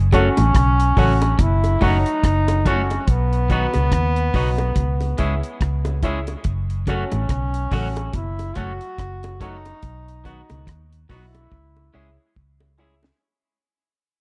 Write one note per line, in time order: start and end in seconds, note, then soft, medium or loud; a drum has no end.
0.00 0.29 F#1 loud
0.12 0.30 C#3 medium
0.12 0.28 F#3 medium
0.12 0.28 A3 medium
0.12 1.42 C#4 loud
0.12 0.28 C#4 medium
0.12 0.31 F#4 medium
0.12 0.29 F#4 medium
0.12 0.31 A4 medium
0.12 0.32 C#5 medium
0.12 0.32 F#5 medium
0.12 kick medium
0.12 closed hi-hat medium
0.12 high bongo medium
0.37 0.53 A1 medium
0.37 0.50 A2 medium
0.37 closed hi-hat medium
0.37 high bongo medium
0.55 0.91 B1 medium
0.55 0.73 C#3 medium
0.55 kick loud
0.55 cross-stick loud
0.55 closed hi-hat loud
0.80 closed hi-hat medium
0.96 1.34 A1 medium
0.96 1.15 C#3 medium
0.96 1.12 F#3 medium
0.96 1.12 A3 medium
0.96 1.13 C#4 medium
0.96 1.15 F#4 medium
0.96 1.13 F#4 medium
0.96 1.16 A4 medium
0.96 1.16 C#5 medium
0.96 1.16 F#5 medium
0.96 kick medium
0.96 open hi-hat medium
1.22 muted clean electric guitar stroke soft
1.22 closed hi-hat soft
1.22 high bongo medium
1.39 1.76 F#1 loud
1.39 1.57 B2 medium
1.39 1.85 E4 loud
1.39 kick loud
1.39 closed hi-hat loud
1.64 closed hi-hat medium
1.64 high bongo medium
1.81 2.03 F#1 medium
1.81 1.99 A2 medium
1.81 1.96 F#3 medium
1.81 1.97 A3 medium
1.81 1.97 C#4 loud
1.81 2.69 D#4 loud
1.81 2.00 F#4 medium
1.81 1.97 F#4 medium
1.81 2.00 A4 medium
1.81 2.00 C#5 medium
1.81 2.00 F#5 loud
1.81 kick medium
1.81 open hi-hat soft
2.06 closed hi-hat medium
2.24 2.97 F#1 medium
2.24 kick loud
2.24 cross-stick loud
2.24 closed hi-hat medium
2.48 2.55 C#5 soft
2.48 2.55 F#5 soft
2.48 closed hi-hat soft
2.48 high bongo medium
2.65 2.81 F#3 medium
2.65 2.81 A3 medium
2.65 2.81 C#4 medium
2.65 3.11 C#4 medium
2.65 2.84 F#4 medium
2.65 2.81 F#4 medium
2.65 2.85 A4 medium
2.65 2.85 C#5 medium
2.65 2.85 F#5 loud
2.65 kick medium
2.65 closed hi-hat medium
2.65 low bongo medium
2.90 closed hi-hat soft
2.90 high bongo medium
3.08 3.66 B1 loud
3.08 6.04 B3 loud
3.08 kick loud
3.08 closed hi-hat medium
3.33 closed hi-hat medium
3.50 3.68 D#3 medium
3.50 3.65 F#3 medium
3.50 3.65 B3 medium
3.50 3.66 D#4 medium
3.50 3.69 F#4 loud
3.50 3.66 F#4 loud
3.50 3.69 B4 medium
3.50 3.69 D#5 medium
3.50 3.69 F#5 loud
3.50 kick medium
3.50 closed hi-hat medium
3.50 high bongo medium
3.74 3.90 C#2 medium
3.74 3.87 B2 medium
3.74 closed hi-hat medium
3.74 high bongo medium
3.92 4.29 D#2 loud
3.92 4.10 C#3 medium
3.92 kick loud
3.92 cross-stick loud
3.92 closed hi-hat loud
4.16 closed hi-hat medium
4.34 4.71 B1 loud
4.34 4.52 C#3 medium
4.34 4.49 F#3 medium
4.34 4.50 B3 medium
4.34 4.50 D#4 medium
4.34 4.53 F#4 medium
4.34 4.50 F#4 medium
4.34 4.53 B4 medium
4.34 4.53 D#5 medium
4.34 4.54 F#5 medium
4.34 kick medium
4.34 open hi-hat medium
4.58 muted clean electric guitar stroke medium
4.58 closed hi-hat soft
4.58 high bongo medium
4.76 5.13 C#2 loud
4.76 4.94 B2 medium
4.76 kick loud
4.76 closed hi-hat medium
5.01 closed hi-hat medium
5.01 high bongo medium
5.18 5.40 C#2 medium
5.18 5.36 G#2 medium
5.18 5.33 G#3 medium
5.18 5.34 C#4 loud
5.18 5.37 E4 loud
5.18 5.34 E4 loud
5.18 5.37 G#4 medium
5.18 5.35 G#4 loud
5.18 5.38 C#5 medium
5.18 5.38 E5 loud
5.18 kick loud
5.18 closed hi-hat medium
5.43 closed hi-hat medium
5.61 6.34 C#2 medium
5.61 kick loud
5.61 cross-stick loud
5.61 closed hi-hat medium
5.85 5.93 C#5 soft
5.85 5.93 E5 soft
5.85 closed hi-hat soft
5.85 high bongo medium
6.03 6.18 G#3 medium
6.03 6.19 C#4 medium
6.03 6.22 E4 medium
6.03 6.19 E4 medium
6.03 6.22 G#4 medium
6.03 6.19 G#4 medium
6.03 6.22 C#5 medium
6.03 6.22 E5 loud
6.03 kick medium
6.03 closed hi-hat medium
6.03 low bongo medium
6.27 closed hi-hat medium
6.27 high bongo medium
6.44 7.03 F#1 loud
6.44 kick loud
6.44 closed hi-hat medium
6.70 closed hi-hat medium
6.87 7.05 C#3 medium
6.87 7.03 F#3 medium
6.87 7.03 A3 medium
6.87 8.17 C#4 loud
6.87 7.03 C#4 medium
6.87 7.06 F#4 medium
6.87 7.04 F#4 medium
6.87 7.06 A4 medium
6.87 7.06 C#5 medium
6.87 7.07 F#5 medium
6.87 kick medium
6.87 closed hi-hat medium
6.87 high bongo medium
7.12 7.28 A1 medium
7.12 7.25 A2 medium
7.12 closed hi-hat medium
7.12 high bongo medium
7.29 7.66 B1 medium
7.29 7.48 C#3 medium
7.29 kick loud
7.29 cross-stick loud
7.29 closed hi-hat loud
7.54 closed hi-hat medium
7.71 8.09 A1 medium
7.71 7.90 C#3 medium
7.71 7.87 F#3 medium
7.71 7.87 A3 medium
7.71 7.87 C#4 medium
7.71 7.90 F#4 medium
7.71 7.88 F#4 medium
7.71 7.91 A4 medium
7.71 7.91 C#5 medium
7.71 7.91 F#5 medium
7.71 kick medium
7.71 cross-stick medium
7.71 open hi-hat medium
7.96 muted clean electric guitar stroke medium
7.96 closed hi-hat medium
7.96 high bongo medium
8.13 8.51 F#1 loud
8.13 8.32 B2 medium
8.13 8.59 E4 medium
8.13 kick loud
8.13 closed hi-hat medium
8.39 closed hi-hat medium
8.39 high bongo medium
8.55 8.78 F#1 medium
8.55 8.74 A2 medium
8.55 8.71 F#3 medium
8.55 8.71 A3 medium
8.55 8.72 C#4 medium
8.55 8.75 F#4 medium
8.55 9.41 F#4 loud
8.55 8.72 F#4 medium
8.55 8.75 A4 medium
8.55 8.75 C#5 medium
8.55 8.75 F#5 loud
8.55 kick medium
8.55 closed hi-hat medium
8.81 closed hi-hat medium
8.98 9.72 F#1 loud
8.98 kick loud
8.98 cross-stick loud
8.98 closed hi-hat medium
9.23 9.30 C#5 soft
9.23 9.30 F#5 soft
9.23 closed hi-hat soft
9.23 high bongo medium
9.40 9.56 F#3 medium
9.40 9.56 A3 medium
9.40 9.56 C#4 medium
9.40 10.22 D#4 loud
9.40 9.59 F#4 medium
9.40 9.57 F#4 medium
9.40 9.60 A4 medium
9.40 9.60 C#5 medium
9.40 9.60 F#5 loud
9.40 kick medium
9.40 closed hi-hat medium
9.40 low bongo medium
9.65 closed hi-hat soft
9.65 high bongo medium
9.83 10.41 B1 loud
9.83 kick loud
9.83 closed hi-hat medium
10.08 closed hi-hat medium
10.24 10.43 D#3 medium
10.24 10.40 F#3 medium
10.24 10.40 B3 medium
10.24 10.41 D#4 medium
10.24 10.82 D#4 medium
10.24 10.44 F#4 medium
10.24 10.41 F#4 medium
10.24 10.44 B4 medium
10.24 10.44 D#5 medium
10.24 10.44 F#5 loud
10.24 kick medium
10.24 closed hi-hat medium
10.24 high bongo medium
10.50 10.66 C#2 medium
10.50 10.63 B2 medium
10.50 closed hi-hat soft
10.50 high bongo medium
10.67 11.04 D#2 medium
10.67 10.85 D#3 medium
10.67 kick loud
10.67 cross-stick loud
10.67 closed hi-hat loud
10.93 closed hi-hat medium
11.09 11.46 B1 medium
11.09 11.27 B2 medium
11.09 11.25 F#3 medium
11.09 11.25 B3 medium
11.09 11.25 D#4 medium
11.09 12.33 E4 medium
11.09 11.28 F#4 medium
11.09 11.25 F#4 medium
11.09 11.28 B4 medium
11.09 11.29 D#5 medium
11.09 11.29 F#5 medium
11.09 kick loud
11.09 cross-stick medium
11.09 open hi-hat medium
11.09 low bongo medium
11.34 muted clean electric guitar stroke soft
11.34 closed hi-hat soft
11.34 high bongo medium
11.52 11.89 C#2 loud
11.52 11.70 C#3 medium
11.52 kick loud
11.76 high bongo medium
11.93 12.16 C#2 loud
11.93 12.12 C#3 medium
11.93 12.09 G#3 medium
11.93 12.09 C#4 medium
11.93 12.13 E4 medium
11.93 12.09 E4 medium
11.93 12.13 G#4 medium
11.93 12.10 G#4 medium
11.93 12.13 C#5 medium
11.93 12.13 E5 medium
12.36 13.10 C#2 medium
12.36 kick loud
12.60 12.68 C#5 soft
12.60 12.68 E5 soft
12.60 high bongo medium
12.78 12.93 G#3 medium
12.78 12.94 C#4 medium
12.78 12.97 E4 medium
12.78 12.94 E4 medium
12.78 12.97 G#4 medium
12.78 12.94 G#4 medium
12.78 12.98 C#5 medium
12.78 12.98 E5 loud
12.78 low bongo medium
13.03 snare medium
13.03 high bongo medium